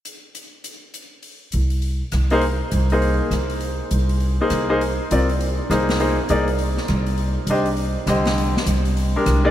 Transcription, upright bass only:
X:1
M:4/4
L:1/8
Q:"Swing" 1/4=202
K:Fdor
V:1 name="Upright bass" clef=bass
z8 | z2 C,,3 z C,,2- | C,, z C,,3 z C,,2- | C,, z C,,3 z C,,2- |
C,, z C,,3 z C,,2- | C,, z C,,3 z C,,2- | C,, z C,,3 z C,,2- | C,, z C,,3 z C,,2 |]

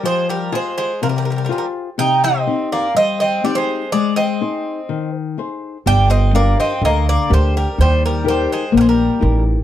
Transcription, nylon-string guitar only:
X:1
M:4/4
L:1/8
Q:1/4=124
K:Gphr
V:1 name="Nylon-string guitar"
F,2 [FAc]2 C,2 [FAc]2 | C,2 [CEG]2 G,2 [CEG]2 | A,2 [EAc]2 E,2 [EAc]2 | G,2 [DGB]2 D,2 [DGB]2 |
E,2 [EGB]2 B,2 [EGB]2 |]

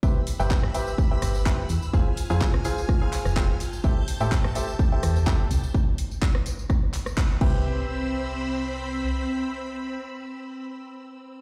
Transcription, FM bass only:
X:1
M:4/4
L:1/16
Q:"Swing 16ths" 1/4=126
K:C
V:1 name="FM bass" clef=bass
C,, z2 G,,, z G,,, z4 G,,,3 z E,, z | F,,, z2 F,, z C,, z4 z F,,,2 z3 | A,,, z2 A,, z G,,, z4 E,,3 z C,, z | z12 z2 C,,2- |
C,,12 z4 | z16 |]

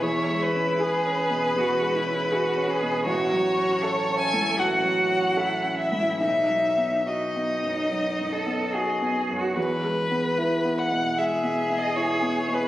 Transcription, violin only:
X:1
M:4/4
L:1/16
Q:1/4=76
K:E
V:1 name="Violin"
c2 B12- B2 | c6 g2 f6 e2 | e4 d8- d2 z2 | B6 f2 e3 d c3 B |]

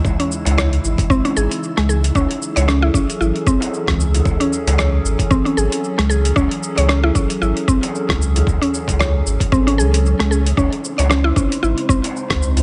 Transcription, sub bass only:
X:1
M:4/4
L:1/16
Q:"Swing 16ths" 1/4=114
K:F#dor
V:1 name="Sub bass" clef=bass
C,, z2 C,,3 G,,, z G,,, z G,,, z2 C,,3 | C,, z2 C,,3 G,,, z G,,, z G,,, z2 C,,3 | C,, z2 C,,3 G,,, z G,,, z G,,, z2 C,,3 | C,, z2 C,,3 G,,, z G,,, z G,,, z2 C,,3 |
C,, z2 C,,3 G,,, z G,,,2 C,,3 C,,3 | C,, z2 C,,3 G,,, z G,,, z G,,, z2 C,,3 |]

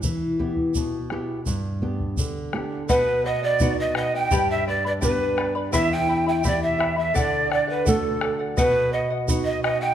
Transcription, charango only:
X:1
M:2/4
L:1/16
Q:1/4=84
K:Bphr
V:1 name="Charango"
z8 | z8 | [B^df]2 [Bdf] [df] [Bdf]2 [Bdf] [df] | [GBdgb]2 [Bdgb] [Bdb] [Bdgb]2 [Bdgb] [Bdb] |
[EBegb]2 [Eegb] [Eeb] [Eegb]2 [Eegb] [Eeb] | [Adf]2 [Adf] [df] [Adf]2 [Adf] [df] | [B^df]2 [Bdf] [df] [Bdf]2 [Bdf] [df] |]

